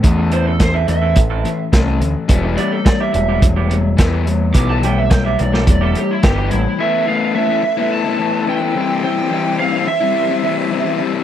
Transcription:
<<
  \new Staff \with { instrumentName = "Lead electric guitar" } { \time 4/4 \key e \phrygian \tempo 4 = 107 r8 c''16 a'16 c''16 e''16 e''8 r2 | r8 d''16 a'16 d''16 e''16 e''8 r2 | d'''16 a''16 g''16 e''16 g''16 e''16 d''16 a'16 d''16 a'16 g'16 e'16 g'8 e'8 | e''8 f''8 e''4 a''4 g''4 |
g''4 f''8 e''2 r8 | }
  \new Staff \with { instrumentName = "String machine" } { \time 4/4 \key e \phrygian << { r1 | r1 | r1 | <a' b' b''>2.~ <a' b' b''>8 <e g' c'' c'''>8~ |
<e g' c'' c'''>1 | } \\ { r1 | r1 | r1 | e''1~ |
e''1 | } >> }
  \new Staff \with { instrumentName = "Clean electric guitar" } { \time 4/4 \key e \phrygian r8 <e c' e' a'>16 r8 <e c' e' a'>16 r16 <e c' e' a'>16 r16 <e c' e' a'>16 r4. | r8 <g b e' g'>16 r8 <g b e' g'>16 r16 <g b e' g'>16 r16 <g b e' g'>16 r4. | r8 <g b e' g'>16 r8 <g b e' g'>16 r16 <g b e' g'>16 r16 <g b e' g'>16 r4. | r1 |
r1 | }
  \new Staff \with { instrumentName = "Overdriven electric guitar" } { \clef bass \time 4/4 \key e \phrygian <a, e a>8 <a, e>8 <a, e>8 <a, e>8 <a, e>8 <a, e>8 <a, e a>8 <a, e>8 | <e g b>8 <e g>8 <e g>8 <e g>8 <e g>8 <e g>8 <e g b>8 <e g>8 | <e g b>8 <e g>8 <e g>8 <e g>8 <e g>8 <e g>8 <e g b>8 <e g>8 | <e a b e'>8 <e a b e'>8 <e a b e'>16 <a b e'>8 <a b e'>8 <a b e'>16 <e a b e'>8 <e a b e'>16 <a b e'>16 <e g c' e'>8 |
<e g c' e'>8 <e g c' e'>8 <e g c' e'>16 <g c' e'>8 <g c' e'>8 <g c' e'>16 <e g c' e'>8 <e g c' e'>16 <g c' e'>16 <e g c' e'>8 | }
  \new Staff \with { instrumentName = "Picked electric bass" } { \clef bass \time 4/4 \key e \phrygian e,4. e,8 a,,8 r8 c,8 d,16 r16 | e,,8 r4 e,,8 e,,4 e,4 | b,,4. b,,8 e,,8 r8 g,,8 a,,16 r16 | r1 |
r1 | }
  \new DrumStaff \with { instrumentName = "Drums" } \drummode { \time 4/4 <hh bd>8 hh8 <hh bd sn>8 hh8 <hh bd>8 hh8 <hh bd sn>8 hh8 | <hh bd>8 hh8 <hh bd sn>8 hh8 <hh bd>8 hh8 <hh bd sn>8 hh8 | <hh bd>8 hh8 <hh bd sn>8 hh16 sn16 <hh bd>8 hh8 <hh bd sn>8 hh8 | r4 r4 r4 r4 |
r4 r4 r4 r4 | }
>>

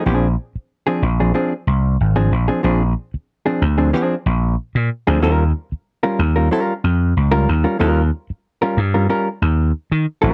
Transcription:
<<
  \new Staff \with { instrumentName = "Hollow-body jazz guitar" } { \time 4/4 \key bes \major \tempo 4 = 93 <f c' d' aes'>16 r4 <f c' d' aes'>16 r16 <f c' d' aes'>16 <f c' d' aes'>16 r4 <f c' d' aes'>16 r16 <f c' d' aes'>16 | <f c' d' aes'>16 r4 <f c' d' aes'>16 r16 <f c' d' aes'>16 <f c' d' aes'>16 r4. <f c' d' aes'>16 | <g des' f' bes'>16 r4 <g des' f' bes'>16 r16 <g des' f' bes'>16 <g des' f' bes'>16 r4 <g des' f' bes'>16 r16 <g des' f' bes'>16 | <g des' f' bes'>16 r4 <g des' f' bes'>16 r16 <g des' f' bes'>16 <g des' f' bes'>16 r4. <g des' f' bes'>16 | }
  \new Staff \with { instrumentName = "Slap bass" } { \clef bass \time 4/4 \key bes \major bes,,8 r4 bes,,8 r8 c,8 aes,,8 bes,,16 r16 | bes,,8 r4 d,8 r8 bes,,8 r16 bes,16 r16 d,16 | ees,8 r4 ees,8 r8 f,8 des,8 ees,16 r16 | ees,8 r4 g,8 r8 ees,8 r16 ees16 r16 a,,16 | }
>>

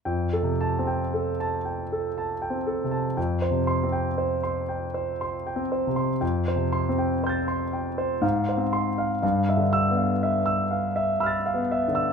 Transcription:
<<
  \new Staff \with { instrumentName = "Grand piano" } { \time 3/4 \key f \lydian \tempo 4 = 60 << { r8 a''8 r2 | r8 c'''8 r2 | r8 c'''8 <c''' g''' a'''>4 r8 c'''8 | r8 e'''8 r4 <b'' f''' a'''>4 | } \\ { g''16 a'8 g''16 a'16 a''16 g''16 a'16 a''16 g''16 a'16 a''16 | g''16 c''8 g''16 c''16 c'''16 g''16 c''16 c'''16 g''16 c''16 c'''16 | g''16 c''8 g''16 c''16 c'''16 g''16 c''16 f''16 c''8 f''16 | f''16 e''8 f''16 e''16 e'''16 f''16 e''16 e'''16 f''16 e''16 e'''16 | } >> }
  \new Staff \with { instrumentName = "Grand piano" } { \clef bass \time 3/4 \key f \lydian \tuplet 3/2 { f,8 c8 c'8 } r4 \tuplet 3/2 { r8 c'8 c8 } | \tuplet 3/2 { f,8 c8 c'8 } r4 \tuplet 3/2 { r8 c'8 c8 } | \tuplet 3/2 { f,8 c8 c'8 } r4 \tuplet 3/2 { aes,8 c'4 } | \tuplet 3/2 { g,8 d8 b8 } r4 \tuplet 3/2 { r8 b8 d8 } | }
>>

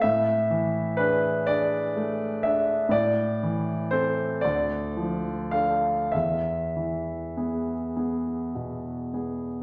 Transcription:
<<
  \new Staff \with { instrumentName = "Grand piano" } { \time 6/8 \key e \phrygian \tempo 4. = 39 e''4 b'8 d''4 e''8 | d''4 c''8 d''4 f''8 | e''2~ e''8 r8 | }
  \new Staff \with { instrumentName = "Grand piano" } { \time 6/8 \key e \phrygian a,8 e8 <d' gis'>8 <d' gis'>8 a8 <d' gis'>8 | a,8 e8 <c' a'>8 d,8 f8 <d' a'>8 | e,8 e8 <b gis'>8 <b gis'>8 b,8 <b gis'>8 | }
>>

